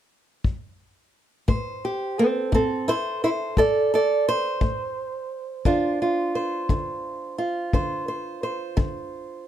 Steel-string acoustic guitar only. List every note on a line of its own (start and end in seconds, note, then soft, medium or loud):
1.48 2.11 A2 medium
1.48 2.88 C5 soft
1.85 2.20 G4 soft
2.19 2.53 C4 medium
2.19 2.53 A4 medium
2.52 3.15 A2 medium
2.52 2.88 C4 medium
2.52 3.57 A4 medium
2.88 2.93 E4 medium
2.88 3.23 C5 medium
3.24 3.29 E4 medium
3.24 3.58 C5 medium
3.57 4.19 A2 medium
3.57 3.92 A4 medium
3.57 3.93 D5 medium
3.94 4.27 A4 medium
3.94 4.28 D5 medium
4.29 6.34 C5 medium
4.61 5.24 A2 medium
5.65 6.28 D3 medium
5.65 9.48 D4 soft
5.65 6.01 F4 soft
6.02 7.37 F4 soft
6.35 7.74 C5 soft
6.70 7.32 D3 medium
7.38 9.46 F4 soft
7.74 8.36 D3 medium
7.74 8.08 C5 soft
8.08 8.43 C5 soft
8.43 9.48 C5 soft
8.77 9.40 D3 medium